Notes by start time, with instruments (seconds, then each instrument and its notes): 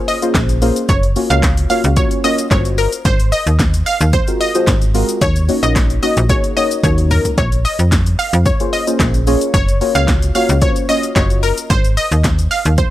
Already playing: synth stab A#3 C#4 F4 G#4 C5
0.08 synth pluck D#5, open hi-hat, shaker
0.22 synth stab A#3 C#4 F4 G#4 C5, closed hi-hat, shaker
0.35 fm bass A#1, kick, snare, clap, closed hi-hat, shaker
0.49 closed hi-hat, shaker
0.62 synth stab A#3 C#4 F4 G#4 C5, open hi-hat, shaker
0.76 closed hi-hat, shaker
0.89 fm bass F#1, synth pluck C#5, kick, closed hi-hat, shaker
1.03 closed hi-hat, shaker
1.16 synth stab A#3 C#4 F4 F#4 C#5, open hi-hat, shaker
1.30 fm bass C#2, synth stab A#3 C#4 F4 F#4 C#5, synth pluck F5, closed hi-hat, shaker
1.43 kick, snare, clap, closed hi-hat, shaker
1.57 closed hi-hat, shaker
1.70 synth stab A#3 C#4 F4 F#4 C#5, synth pluck F5, open hi-hat, shaker
1.84 fm bass C#2, closed hi-hat, shaker
1.96 synth stab A#3 C#4 F4 F#4 C#5, synth pluck C#5, kick, closed hi-hat, shaker
2.11 closed hi-hat, shaker
2.24 synth stab A#3 C#4 F4 F#4 C#5, synth pluck D#5, open hi-hat, shaker
2.38 closed hi-hat, shaker
2.51 fm bass G1, synth stab A#3 C#4 F4 F#4 C5, synth pluck C#5, kick, snare, clap, closed hi-hat, shaker
2.65 closed hi-hat, shaker
2.78 synth pluck A#4, open hi-hat, shaker
2.92 closed hi-hat, shaker
3.05 fm bass G#1, synth pluck C5, kick, closed hi-hat, shaker
3.20 closed hi-hat, shaker
3.32 synth pluck D#5, open hi-hat, shaker
3.47 fm bass D#2, closed hi-hat, shaker
3.59 kick, snare, clap, closed hi-hat, shaker
3.74 closed hi-hat, shaker
3.86 synth pluck F5, open hi-hat, shaker
4.01 fm bass D#2, closed hi-hat, shaker
4.13 synth pluck C5, kick, closed hi-hat, shaker
4.28 synth stab G#3 C4 F4 F#4 A#4, closed hi-hat, shaker
4.41 synth pluck D#5, open hi-hat, shaker
4.55 synth stab G#3 C4 F4 F#4 C5, closed hi-hat, shaker
4.67 fm bass G#1, kick, snare, clap, closed hi-hat, shaker
4.82 closed hi-hat, shaker
4.94 synth stab G#3 C4 F4 F#4 A#4, open hi-hat, shaker
5.09 closed hi-hat, shaker
5.21 fm bass D#2, synth pluck C#5, kick, closed hi-hat, shaker
5.36 closed hi-hat, shaker
5.48 synth stab A#3 C#4 D#4 F#4 C#5, open hi-hat, shaker
5.63 fm bass A#1, synth stab A#3 C#4 D#4 F#4 C#5, synth pluck D#5, closed hi-hat, shaker
5.76 kick, snare, clap, closed hi-hat, shaker
5.90 closed hi-hat, shaker
6.02 synth stab A#3 C#4 D#4 F#4 C#5, synth pluck D#5, open hi-hat, shaker
6.17 fm bass A#1, closed hi-hat, shaker
6.29 synth stab A#3 C#4 D#4 F#4 G#4, synth pluck C#5, kick, closed hi-hat, shaker
6.44 closed hi-hat, shaker
6.56 synth stab A#3 C#4 D#4 F#4 C#5, synth pluck D#5, open hi-hat, shaker
6.71 closed hi-hat, shaker
6.83 fm bass D#2, synth stab A#3 C#4 D#4 F#4 C#5, synth pluck C#5, kick, closed hi-hat, high tom, shaker
6.98 closed hi-hat, shaker
7.11 synth pluck A#4, mid tom, open hi-hat, shaker
7.25 closed hi-hat, floor tom, shaker
7.38 fm bass A#1, synth pluck C#5, kick, closed hi-hat, shaker
7.52 closed hi-hat, shaker
7.65 synth pluck D#5, open hi-hat, shaker
7.79 fm bass F2, closed hi-hat, shaker
7.92 kick, snare, clap, closed hi-hat, shaker
8.06 closed hi-hat, shaker
8.19 synth pluck F5, open hi-hat, shaker
8.33 fm bass F2, closed hi-hat, shaker
8.46 synth pluck C#5, kick, closed hi-hat, shaker
8.60 synth stab A#3 C#4 F4 G#4 C5, closed hi-hat, shaker
8.73 synth pluck D#5, open hi-hat, shaker
8.87 synth stab A#3 C#4 F4 G#4 C5, closed hi-hat, shaker
9.00 fm bass A#1, kick, snare, clap, closed hi-hat, shaker
9.14 closed hi-hat, shaker
9.27 synth stab A#3 C#4 F4 G#4 C#5, open hi-hat, shaker
9.41 closed hi-hat, shaker
9.54 fm bass F#1, synth pluck C#5, kick, closed hi-hat, shaker
9.69 closed hi-hat, shaker
9.81 synth stab A#3 C#4 F4 F#4 C#5, open hi-hat, shaker
9.95 fm bass C#2, synth stab A#3 C#4 F4 F#4 C#5, synth pluck F5, closed hi-hat, shaker
10.08 kick, snare, clap, closed hi-hat, shaker
10.22 closed hi-hat, shaker
10.35 synth stab A#3 C#4 F4 F#4 C#5, synth pluck F5, open hi-hat, shaker
10.49 fm bass C#2, closed hi-hat, shaker
10.62 synth stab A#3 C#4 F4 F#4 C5, synth pluck C#5, kick, closed hi-hat, shaker
10.76 closed hi-hat, shaker
10.89 synth stab A#3 C#4 F4 F#4 C#5, synth pluck D#5, open hi-hat, shaker
11.03 closed hi-hat, shaker
11.16 fm bass F#1, synth stab A#3 C#4 F4 F#4 D#5, synth pluck C#5, kick, snare, clap, closed hi-hat, shaker
11.30 closed hi-hat, shaker
11.43 synth pluck A#4, open hi-hat, shaker
11.58 closed hi-hat, shaker
11.70 fm bass G#1, synth pluck C5, kick, closed hi-hat, shaker
11.85 closed hi-hat, shaker
11.97 synth pluck D#5, open hi-hat, shaker
12.12 fm bass D#2, closed hi-hat, shaker
12.24 kick, snare, clap, closed hi-hat, shaker
12.39 closed hi-hat, shaker
12.51 synth pluck F5, open hi-hat, shaker
12.65 fm bass D#2, closed hi-hat, shaker
12.78 synth pluck C5, kick, closed hi-hat, shaker